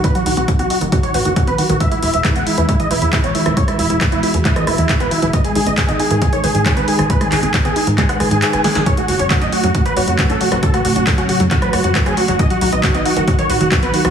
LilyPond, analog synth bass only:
\new Staff \with { instrumentName = "Analog synth bass" } { \clef bass \time 4/4 \key fis \dorian \tempo 4 = 136 r8 b,,16 b,,16 r16 b,,16 r16 fis,,16 r8 a,,16 fis,,16 r16 b,,16 r16 b,,16 | r8 e,,16 e,,16 r16 e,,16 r16 e,16 r8 e,,16 e,16 r16 e,,16 r16 e,,16 | r8 e,,16 e,,16 r16 e,,16 r16 e,16 r8 e,,16 e,16 r16 e,,16 r16 e,,16 | r8 gis,,16 gis,,16 r16 gis,,16 r16 gis,16 r8 gis,,16 gis,16 r16 gis,,16 r16 gis,,16 |
r8 gis,,16 gis,,16 r16 gis,,16 r16 gis,16 r8 gis,,16 gis,16 r16 gis,,16 r16 gis,,16 | r8 fis,,16 fis,,16 r16 fis,,16 r16 fis,16 r8 fis,,16 fis,16 r16 fis,,16 r16 fis,,16 | r8 fis,,16 fis,,16 r16 fis,,16 r16 fis,16 r8 fis,,16 fis,16 r16 fis,,16 r16 fis,,16 | r8 b,,16 b,,16 r16 b,,16 r16 fis,,16 r8 b,,16 fis,,16 r16 b,,16 r16 b,,16 | }